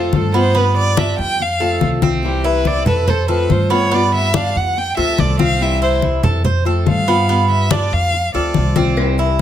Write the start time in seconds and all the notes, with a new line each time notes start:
Already playing: F3 A3 C4 F4 A4
0.13 G2 F3 A3 C4 F4 A4, high conga
0.34 F3 A3 B3 C4 F4 C5, high conga
0.55 G3 B3 F4 B4, high conga
0.76 D5, high conga
0.97 G3 B3 D4 F4 E5, high conga
1.18 F2 G5, high conga
1.40 F5, muted nylon-string guitar stroke, high conga
1.60 F3 A3 C4 F4 A4, high conga
1.81 C2 F3 A3 C4 F4, high conga
2.02 F3 A3 C4 F4, high conga
2.23 C3 E3 G3 C4 E4 G4, high conga
2.44 E4 B4, high conga
2.65 E3 G3 C4 E4 D5, high conga
2.86 F2 A4 B4, high conga, low conga
3.07 A4 C5, muted nylon-string guitar stroke, high conga, low conga
3.28 F3 A3 C4 F4 A4 B4, high conga
3.50 G2 F3 A3 C4 F4 C5, high conga
3.70 F3 A3 B3 C4 F4 C#5, high conga
3.91 G3 B3 F4 D5, high conga
4.13 E5, high conga
4.34 B3 D4 F4 F5, high conga
4.55 F2 F#5, high conga
4.76 G5, muted nylon-string guitar stroke, high conga
4.97 D2 F3 A3 C4 F4 A4 E5, high conga
5.18 C2 F3 A3 C4 F4 D5, high conga
5.39 F3 A3 C4 F4 F5, high conga
5.60 C3 E3 G3 C4 E4 E5, high conga
5.82 E4 C5, high conga
6.02 E3 G3 C4 E4, high conga
6.23 F2 A4, high conga, low conga
6.44 C5, muted nylon-string guitar stroke, high conga, low conga
6.65 F3 A3 C4 F4 A4, high conga
6.86 G2 F3 A3 C4 F4 F5, high conga
7.08 F3 A3 B3 C4 F4, high conga
7.28 G3 B3 F4, high conga
7.49 E5, high conga
7.71 G3 B3 D4 F4 D5, high conga
7.91 F2 F5, high conga
8.13 muted nylon-string guitar stroke, high conga
8.34 D2 F3 A3 C4 F4 A4 D5, high conga
8.54 C2 F3 A3 C4 F4, high conga
8.76 F3 A3 C4 F4, high conga
8.97 C3 E3 G3 C4 E4, cowbell, high conga, claves
9.18 E4, high conga